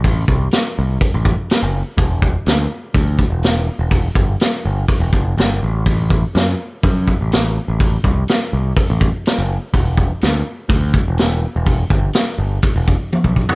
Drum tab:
HH |o---o---o---o---|o---o---o---o---|o---o---o---o---|o---o---o---o---|
SD |----o-------o---|----o-------o---|----o-------o---|----o-------o---|
T1 |----------------|----------------|----------------|----------------|
FT |----------------|----------------|----------------|----------------|
BD |o-o-----o-o-----|o-o-----o-o-----|o-o-----o-o-----|o-o-----o-o-----|

HH |o---o---o---o---|o---o---o---o---|o---o---o-------|
SD |----o-------o---|----o-------o---|----o-----------|
T1 |----------------|----------------|------------o---|
FT |----------------|----------------|---------------o|
BD |o-o-----o-o-----|o-o-----o-o-----|o-o-----o-o--oo-|